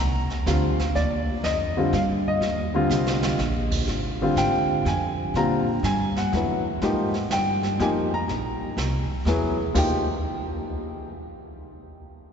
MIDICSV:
0, 0, Header, 1, 5, 480
1, 0, Start_track
1, 0, Key_signature, -3, "major"
1, 0, Tempo, 488202
1, 946, Time_signature, 3, 2, 24, 8
1, 12122, End_track
2, 0, Start_track
2, 0, Title_t, "Grand piano"
2, 0, Program_c, 0, 0
2, 0, Note_on_c, 0, 82, 103
2, 455, Note_on_c, 0, 55, 55
2, 456, Note_on_c, 0, 50, 62
2, 463, Note_on_c, 0, 65, 63
2, 463, Note_on_c, 0, 77, 73
2, 464, Note_on_c, 0, 60, 52
2, 485, Note_off_c, 0, 82, 0
2, 746, Note_off_c, 0, 50, 0
2, 746, Note_off_c, 0, 55, 0
2, 750, Note_off_c, 0, 60, 0
2, 750, Note_off_c, 0, 65, 0
2, 938, Note_on_c, 0, 74, 79
2, 959, Note_off_c, 0, 77, 0
2, 1415, Note_on_c, 0, 75, 83
2, 1436, Note_off_c, 0, 74, 0
2, 1739, Note_on_c, 0, 50, 66
2, 1742, Note_on_c, 0, 55, 64
2, 1746, Note_on_c, 0, 60, 64
2, 1750, Note_on_c, 0, 65, 68
2, 1866, Note_off_c, 0, 75, 0
2, 1887, Note_off_c, 0, 50, 0
2, 1889, Note_off_c, 0, 55, 0
2, 1891, Note_off_c, 0, 60, 0
2, 1892, Note_off_c, 0, 65, 0
2, 1903, Note_on_c, 0, 77, 76
2, 1974, Note_off_c, 0, 77, 0
2, 2240, Note_on_c, 0, 75, 85
2, 2695, Note_on_c, 0, 50, 73
2, 2700, Note_on_c, 0, 55, 67
2, 2709, Note_on_c, 0, 60, 60
2, 2709, Note_on_c, 0, 65, 78
2, 3308, Note_off_c, 0, 50, 0
2, 3310, Note_off_c, 0, 55, 0
2, 3315, Note_off_c, 0, 60, 0
2, 3315, Note_off_c, 0, 65, 0
2, 3631, Note_off_c, 0, 75, 0
2, 4143, Note_on_c, 0, 50, 69
2, 4148, Note_on_c, 0, 55, 62
2, 4150, Note_on_c, 0, 60, 67
2, 4153, Note_on_c, 0, 65, 79
2, 4303, Note_on_c, 0, 79, 85
2, 4752, Note_off_c, 0, 50, 0
2, 4754, Note_off_c, 0, 55, 0
2, 4756, Note_off_c, 0, 60, 0
2, 4757, Note_off_c, 0, 65, 0
2, 4793, Note_on_c, 0, 80, 82
2, 4797, Note_off_c, 0, 79, 0
2, 5235, Note_off_c, 0, 80, 0
2, 5268, Note_on_c, 0, 50, 65
2, 5269, Note_on_c, 0, 55, 61
2, 5271, Note_on_c, 0, 60, 65
2, 5277, Note_on_c, 0, 65, 68
2, 5278, Note_on_c, 0, 82, 84
2, 5551, Note_off_c, 0, 50, 0
2, 5552, Note_off_c, 0, 55, 0
2, 5553, Note_off_c, 0, 60, 0
2, 5556, Note_off_c, 0, 65, 0
2, 5752, Note_on_c, 0, 80, 88
2, 5765, Note_off_c, 0, 82, 0
2, 6069, Note_on_c, 0, 78, 72
2, 6075, Note_off_c, 0, 80, 0
2, 6227, Note_on_c, 0, 54, 50
2, 6232, Note_on_c, 0, 59, 43
2, 6238, Note_on_c, 0, 71, 55
2, 6241, Note_on_c, 0, 64, 46
2, 6511, Note_off_c, 0, 54, 0
2, 6512, Note_off_c, 0, 78, 0
2, 6513, Note_off_c, 0, 59, 0
2, 6517, Note_off_c, 0, 71, 0
2, 6518, Note_off_c, 0, 64, 0
2, 6708, Note_on_c, 0, 53, 65
2, 6715, Note_on_c, 0, 63, 60
2, 6716, Note_on_c, 0, 58, 55
2, 6716, Note_on_c, 0, 67, 68
2, 6992, Note_off_c, 0, 53, 0
2, 6995, Note_off_c, 0, 63, 0
2, 6996, Note_off_c, 0, 58, 0
2, 6996, Note_off_c, 0, 67, 0
2, 7201, Note_on_c, 0, 79, 82
2, 7668, Note_on_c, 0, 53, 60
2, 7672, Note_on_c, 0, 58, 57
2, 7678, Note_on_c, 0, 67, 69
2, 7679, Note_on_c, 0, 63, 58
2, 7682, Note_on_c, 0, 80, 87
2, 7687, Note_off_c, 0, 79, 0
2, 7752, Note_off_c, 0, 80, 0
2, 7952, Note_off_c, 0, 53, 0
2, 7954, Note_off_c, 0, 58, 0
2, 7957, Note_off_c, 0, 67, 0
2, 7958, Note_off_c, 0, 63, 0
2, 8003, Note_on_c, 0, 82, 87
2, 9077, Note_off_c, 0, 82, 0
2, 9114, Note_on_c, 0, 54, 60
2, 9115, Note_on_c, 0, 59, 57
2, 9118, Note_on_c, 0, 64, 58
2, 9125, Note_on_c, 0, 68, 67
2, 9396, Note_off_c, 0, 54, 0
2, 9396, Note_off_c, 0, 59, 0
2, 9398, Note_off_c, 0, 64, 0
2, 9401, Note_off_c, 0, 68, 0
2, 9580, Note_on_c, 0, 53, 67
2, 9584, Note_on_c, 0, 58, 54
2, 9592, Note_on_c, 0, 63, 57
2, 9596, Note_on_c, 0, 67, 70
2, 9616, Note_on_c, 0, 79, 66
2, 9869, Note_off_c, 0, 53, 0
2, 9871, Note_off_c, 0, 58, 0
2, 9875, Note_off_c, 0, 63, 0
2, 9877, Note_off_c, 0, 67, 0
2, 9898, Note_off_c, 0, 79, 0
2, 12122, End_track
3, 0, Start_track
3, 0, Title_t, "Upright bass"
3, 0, Program_c, 1, 32
3, 0, Note_on_c, 1, 36, 85
3, 277, Note_off_c, 1, 36, 0
3, 455, Note_on_c, 1, 38, 92
3, 926, Note_off_c, 1, 38, 0
3, 936, Note_on_c, 1, 39, 83
3, 1406, Note_off_c, 1, 39, 0
3, 1411, Note_on_c, 1, 41, 88
3, 1883, Note_off_c, 1, 41, 0
3, 1894, Note_on_c, 1, 43, 96
3, 2362, Note_off_c, 1, 43, 0
3, 2368, Note_on_c, 1, 39, 77
3, 2841, Note_off_c, 1, 39, 0
3, 2846, Note_on_c, 1, 36, 86
3, 3320, Note_off_c, 1, 36, 0
3, 3324, Note_on_c, 1, 34, 90
3, 3799, Note_off_c, 1, 34, 0
3, 3807, Note_on_c, 1, 32, 79
3, 4281, Note_off_c, 1, 32, 0
3, 4286, Note_on_c, 1, 44, 83
3, 4760, Note_off_c, 1, 44, 0
3, 4770, Note_on_c, 1, 41, 91
3, 5242, Note_off_c, 1, 41, 0
3, 5250, Note_on_c, 1, 46, 86
3, 5722, Note_off_c, 1, 46, 0
3, 5730, Note_on_c, 1, 43, 89
3, 6203, Note_off_c, 1, 43, 0
3, 6218, Note_on_c, 1, 40, 93
3, 6686, Note_off_c, 1, 40, 0
3, 6703, Note_on_c, 1, 44, 79
3, 7170, Note_off_c, 1, 44, 0
3, 7181, Note_on_c, 1, 43, 87
3, 7649, Note_off_c, 1, 43, 0
3, 7664, Note_on_c, 1, 41, 96
3, 8130, Note_off_c, 1, 41, 0
3, 8141, Note_on_c, 1, 34, 71
3, 8438, Note_off_c, 1, 34, 0
3, 8619, Note_on_c, 1, 36, 85
3, 8917, Note_off_c, 1, 36, 0
3, 9097, Note_on_c, 1, 40, 90
3, 9567, Note_off_c, 1, 40, 0
3, 9585, Note_on_c, 1, 39, 84
3, 9881, Note_off_c, 1, 39, 0
3, 12122, End_track
4, 0, Start_track
4, 0, Title_t, "Muted upright bass strokes"
4, 298, Note_on_c, 9, 29, 37
4, 396, Note_off_c, 9, 29, 0
4, 8466, Note_on_c, 9, 29, 36
4, 8564, Note_off_c, 9, 29, 0
4, 8939, Note_on_c, 9, 29, 32
4, 9037, Note_off_c, 9, 29, 0
4, 12122, End_track
5, 0, Start_track
5, 0, Title_t, "Drums"
5, 298, Note_on_c, 9, 38, 40
5, 397, Note_off_c, 9, 38, 0
5, 460, Note_on_c, 9, 44, 61
5, 461, Note_on_c, 9, 38, 56
5, 558, Note_off_c, 9, 44, 0
5, 559, Note_off_c, 9, 38, 0
5, 780, Note_on_c, 9, 38, 42
5, 878, Note_off_c, 9, 38, 0
5, 938, Note_on_c, 9, 25, 49
5, 938, Note_on_c, 9, 38, 37
5, 1036, Note_off_c, 9, 38, 0
5, 1414, Note_on_c, 9, 44, 57
5, 1415, Note_on_c, 9, 38, 59
5, 1512, Note_off_c, 9, 44, 0
5, 1513, Note_off_c, 9, 38, 0
5, 1896, Note_on_c, 9, 38, 44
5, 1994, Note_off_c, 9, 38, 0
5, 2376, Note_off_c, 9, 25, 0
5, 2376, Note_on_c, 9, 25, 38
5, 2376, Note_on_c, 9, 38, 44
5, 2475, Note_off_c, 9, 38, 0
5, 2855, Note_on_c, 9, 44, 60
5, 2856, Note_on_c, 9, 38, 49
5, 2954, Note_off_c, 9, 44, 0
5, 2955, Note_off_c, 9, 38, 0
5, 3014, Note_on_c, 9, 38, 57
5, 3112, Note_off_c, 9, 38, 0
5, 3172, Note_on_c, 9, 38, 77
5, 3271, Note_off_c, 9, 38, 0
5, 3332, Note_on_c, 9, 38, 55
5, 3431, Note_off_c, 9, 38, 0
5, 3652, Note_on_c, 9, 36, 72
5, 3653, Note_on_c, 9, 49, 74
5, 3750, Note_off_c, 9, 36, 0
5, 3751, Note_off_c, 9, 49, 0
5, 3813, Note_off_c, 9, 25, 0
5, 3813, Note_on_c, 9, 25, 46
5, 3813, Note_on_c, 9, 38, 40
5, 3911, Note_off_c, 9, 38, 0
5, 4294, Note_on_c, 9, 44, 59
5, 4295, Note_on_c, 9, 38, 60
5, 4392, Note_off_c, 9, 44, 0
5, 4393, Note_off_c, 9, 38, 0
5, 4778, Note_on_c, 9, 38, 47
5, 4876, Note_off_c, 9, 38, 0
5, 5261, Note_off_c, 9, 25, 0
5, 5261, Note_on_c, 9, 25, 39
5, 5261, Note_on_c, 9, 38, 38
5, 5359, Note_off_c, 9, 38, 0
5, 5741, Note_on_c, 9, 44, 52
5, 5742, Note_on_c, 9, 38, 64
5, 5839, Note_off_c, 9, 44, 0
5, 5840, Note_off_c, 9, 38, 0
5, 6059, Note_on_c, 9, 38, 37
5, 6158, Note_off_c, 9, 38, 0
5, 6223, Note_on_c, 9, 38, 42
5, 6321, Note_off_c, 9, 38, 0
5, 6701, Note_off_c, 9, 25, 0
5, 6701, Note_on_c, 9, 25, 41
5, 6701, Note_on_c, 9, 38, 39
5, 6799, Note_off_c, 9, 38, 0
5, 7018, Note_on_c, 9, 38, 34
5, 7116, Note_off_c, 9, 38, 0
5, 7183, Note_on_c, 9, 44, 56
5, 7184, Note_on_c, 9, 38, 63
5, 7282, Note_off_c, 9, 44, 0
5, 7283, Note_off_c, 9, 38, 0
5, 7502, Note_on_c, 9, 38, 37
5, 7600, Note_off_c, 9, 38, 0
5, 7670, Note_on_c, 9, 38, 42
5, 7768, Note_off_c, 9, 38, 0
5, 8151, Note_off_c, 9, 25, 0
5, 8151, Note_on_c, 9, 25, 36
5, 8151, Note_on_c, 9, 38, 37
5, 8250, Note_off_c, 9, 38, 0
5, 8628, Note_on_c, 9, 44, 49
5, 8629, Note_on_c, 9, 38, 58
5, 8726, Note_off_c, 9, 44, 0
5, 8727, Note_off_c, 9, 38, 0
5, 9108, Note_on_c, 9, 38, 44
5, 9207, Note_off_c, 9, 38, 0
5, 9588, Note_on_c, 9, 36, 75
5, 9588, Note_on_c, 9, 38, 65
5, 9588, Note_on_c, 9, 49, 70
5, 9686, Note_off_c, 9, 36, 0
5, 9686, Note_off_c, 9, 38, 0
5, 9686, Note_off_c, 9, 49, 0
5, 10102, Note_off_c, 9, 25, 0
5, 12122, End_track
0, 0, End_of_file